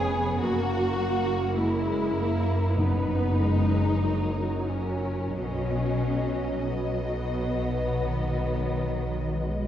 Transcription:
Already playing: F1 F2 B3 G#4 C#5
0.41 F#1 F#2 A#3 F#4 A#4
0.99 A#3
1.56 G#3 E4
2.16 A#3
2.76 F#2 B3 D#4 B4
3.38 G#3
4.03 F#3 A#4
4.69 C#4
5.35 B1 B2 F#3 C#4 D#5
6.72 B2 B3
8.05 D#3
9.35 G#3

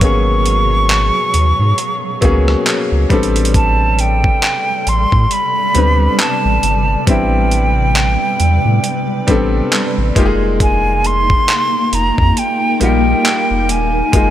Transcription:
Already playing: B2 F#3 A#3 B3 C#4 G#4 A#4 C#5
0.00 G#1 F#3 A#3 B3 C#4 C#6, kick, closed hi-hat
0.04 G#4
0.46 closed hi-hat
0.89 clap, closed hi-hat
1.34 D#2, closed hi-hat
1.59 G#2
1.78 closed hi-hat
2.21 C#2 F#3 A#3 B3 C#4 G#4, kick, closed hi-hat
2.48 cross-stick
2.66 clap, closed hi-hat
2.92 C#2
3.09 A1 C3 G3 B3 C4 D4 A4 D5, kick, closed hi-hat
3.23 closed hi-hat
3.36 closed hi-hat
3.45 closed hi-hat
3.54 A5, kick, closed hi-hat
3.99 G5, closed hi-hat
4.24 kick
4.42 clap, closed hi-hat
4.87 A1 C6, closed hi-hat
5.12 A2, kick
5.31 B5, closed hi-hat
5.74 D2 G3 B3 C4 D4 B4, closed hi-hat
6.19 A5, clap, closed hi-hat
6.45 A1
6.63 G1 B4, closed hi-hat
7.06 A1 G3 B3 C4 D4 E4 G5, kick, closed hi-hat
7.51 closed hi-hat
7.95 clap, closed hi-hat
8.40 E2, closed hi-hat
8.65 A2
8.84 closed hi-hat
9.27 A1 G3 B3 C4 D4 A4, kick, closed hi-hat
9.72 clap, closed hi-hat
9.98 A1
10.15 F1 G#3 A#3 D#4 F4 G4 A#4 F5, kick, closed hi-hat
10.26 G#4
10.60 G#5, kick, closed hi-hat
11.04 C6, closed hi-hat
11.30 kick
11.48 clap, closed hi-hat
11.93 F1 A#5, closed hi-hat
12.18 F2, kick
12.37 G5, closed hi-hat
12.80 A#1 G3 A#3 D#4 F4 G4 G5, closed hi-hat
13.25 clap, closed hi-hat
13.51 F1
13.69 D#1 G#5, closed hi-hat
14.12 F1 G#3 A#3 D#4 F4 G#4, kick, closed hi-hat

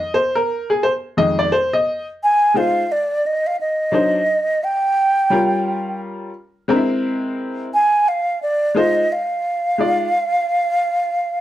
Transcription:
Already playing: D#5
0.14 C5
0.35 A#4
0.70 G#4
0.83 C5
1.17 F2 D#3 G#3 D#5
1.39 D5
1.52 C5
1.73 D#5
2.23 G#5
2.54 G#3 D#4 F4 C5 F5
2.92 D5
3.26 D#5
3.47 F5
3.61 D#5
3.92 F#3 D4 D#4 C5
4.64 G5
5.30 G3 C#4 F4 A#4
6.68 G#3 C4 D4 A#4
6.76 E4
7.74 G#5
8.08 F5
8.42 D5
8.75 G#3 D#4 F4 C5 D#5
9.12 F5
9.78 G#3 D#4 F4 D5

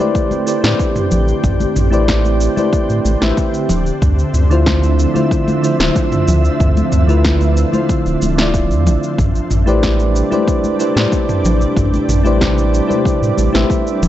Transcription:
Already playing: D3 C4 G4
0.00 A3 E4 G4 B4 C5 D5
0.15 kick, cabasa
0.31 high conga, cabasa
0.46 A3 E4 G4 B4 C5 D5, cabasa
0.61 A2 A3 E4 G4 B4, snare, cabasa
0.66 C5 D5
0.79 kick, cabasa
0.96 mid tom, cabasa
1.11 A1, low conga, cabasa
1.28 cabasa
1.44 A1, kick, mid tom, cabasa
1.60 high conga, cabasa
1.76 A1, mid tom, cabasa
1.91 A3 E4 G4 B4 C5 D5, cabasa
2.08 kick, snare, cabasa
2.25 cabasa
2.41 cabasa
2.56 A3 E4 G4 B4 C5 D5, high conga, cabasa
2.73 kick, cabasa
2.90 A2, cabasa
3.05 A1, high conga, cabasa
3.21 A1 A3 E4 G4 B4 C5 E5, snare, cabasa
3.37 kick, cabasa
3.54 cabasa
3.69 D1 F3 E5, low conga, cabasa
3.86 cabasa
4.02 D2, kick, mid tom, cabasa
4.19 cabasa
4.34 D2, mid tom, cabasa
4.50 D3 A3 E4 F4 C5, cabasa
4.66 kick, snare, cabasa
4.83 cabasa
4.99 cabasa
5.14 D3 A3 E4 F4 C5, high conga, cabasa
5.31 kick, cabasa
5.48 high conga, cabasa
5.62 D3 A3 E4 F4 C5, cabasa
5.77 D1 D3 A3 E4, snare, cabasa
5.82 F4 C5
5.96 kick, cabasa
6.12 mid tom, cabasa
6.28 D2, low conga, cabasa
6.45 cabasa
6.60 D2, kick, mid tom, cabasa
6.77 high conga, cabasa
6.92 D2, mid tom, cabasa
7.07 D3 A3 E4 F4 B4, cabasa
7.25 kick, snare, cabasa
7.41 cabasa
7.57 cabasa
7.72 D3 A3 E4 F4 C5, high conga, cabasa
7.89 kick, cabasa
8.06 D1, cabasa
8.22 D1, high conga, cabasa
8.36 D3 A3 E4, snare, cabasa
8.40 F4 D5
8.54 kick, cabasa
8.70 F2, cabasa
8.86 A1, low conga, cabasa
9.03 cabasa
9.18 A1 C3 G3 D4, kick, mid tom, cabasa
9.35 cabasa
9.51 A1, mid tom, cabasa
9.66 A3 E4 G4 B4 C5 D5, cabasa
9.83 kick, snare, cabasa
10.00 cabasa
10.16 cabasa
10.31 A3 E4 G4 B4 C5 D5, high conga, cabasa
10.48 kick, cabasa
10.64 high conga, cabasa
10.79 A3 E4 G4 B4 C5 D5, cabasa
10.94 A2 A3 E4 G4 B4, snare, cabasa
10.99 C5 D5
11.12 kick, cabasa
11.29 mid tom, cabasa
11.44 A1, low conga, cabasa
11.61 cabasa
11.77 A1, kick, mid tom, cabasa
11.94 high conga, cabasa
12.08 A1, mid tom, cabasa
12.23 A3 E4 G4 B4 C5 D5, cabasa
12.41 kick, snare, cabasa
12.58 cabasa
12.74 cabasa
12.87 A3 E4 G4 B4 C5 D5, high conga, cabasa
13.05 kick, cabasa
13.22 A2, cabasa
13.37 A1, high conga, cabasa
13.53 A1 A3 E4 G4 B4 C5 E5, snare, cabasa
13.70 kick, cabasa
13.87 cabasa
14.01 D1 D3 F3 C4 E5, low conga, cabasa

